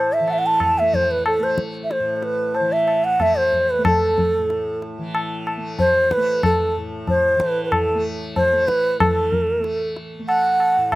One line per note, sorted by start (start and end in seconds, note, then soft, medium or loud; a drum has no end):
0.00 1.99 A2 medium
0.00 0.19 E3 medium
0.00 0.81 A3 medium
0.00 0.14 C5 medium
0.13 0.32 E5 medium
0.20 2.59 E3 medium
0.28 0.34 F#5 medium
0.28 tabla na medium
0.32 0.40 E5 medium
0.39 0.48 F#5 medium
0.47 0.80 A5 medium
0.60 tabla na medium
0.60 tabla ge medium
0.79 1.39 A3 medium
0.79 0.96 E5 medium
0.94 1.13 C5 medium
0.94 tabla ge medium
1.11 1.26 B4 medium
1.26 1.45 A4 medium
1.26 tabla na medium
1.39 3.20 A3 medium
1.39 1.59 C5 medium
1.58 tabla ke medium
1.84 1.93 E5 medium
1.91 2.16 C5 medium
1.91 tabla te medium
2.00 4.38 A2 medium
2.16 2.25 C5 medium
2.22 2.57 B4 medium
2.22 tabla te medium
2.55 2.74 C5 medium
2.55 tabla tin medium
2.60 4.98 E3 medium
2.72 3.06 E5 medium
2.88 tabla na medium
3.04 3.23 F#5 loud
3.20 3.78 A3 medium
3.20 3.39 E5 loud
3.20 tabla na medium
3.20 tabla ge medium
3.38 3.72 C5 medium
3.53 tabla ge soft
3.70 3.86 B4 medium
3.78 5.57 A3 medium
3.85 4.79 A4 medium
3.85 tabla na loud
3.85 tabla ge medium
4.18 tabla ge medium
4.39 6.76 A2 medium
4.50 tabla te medium
4.82 tabla te medium
4.98 7.35 E3 medium
5.15 tabla na medium
5.47 tabla na medium
5.57 6.17 A3 medium
5.79 6.14 C5 loud
5.79 tabla tin medium
5.79 tabla ge medium
6.11 6.44 B4 medium
6.11 tabla ke medium
6.17 7.95 A3 medium
6.43 6.74 A4 medium
6.43 tabla na medium
6.43 tabla ge medium
6.77 10.77 A2 medium
7.07 7.42 C5 medium
7.07 tabla tin medium
7.07 tabla ge medium
7.35 9.00 E3 medium
7.40 7.64 B4 medium
7.40 tabla ke medium
7.65 7.73 B4 medium
7.72 8.04 A4 medium
7.72 tabla na medium
7.72 tabla ge medium
7.95 8.53 A3 medium
8.36 8.69 C5 medium
8.36 tabla tin medium
8.36 tabla ge medium
8.53 9.60 A3 medium
8.67 9.00 B4 medium
8.67 tabla ke medium
9.00 10.95 E3 medium
9.00 9.92 A4 medium
9.00 tabla na loud
9.00 tabla ge medium
9.32 tabla ge medium
9.60 10.19 A3 medium
9.64 tabla te medium
9.96 tabla te medium
10.19 10.95 A3 medium
10.28 10.94 F#5 loud
10.28 tabla na medium
10.60 tabla na medium
10.77 10.95 A2 medium
10.92 tabla na medium
10.92 tabla ge medium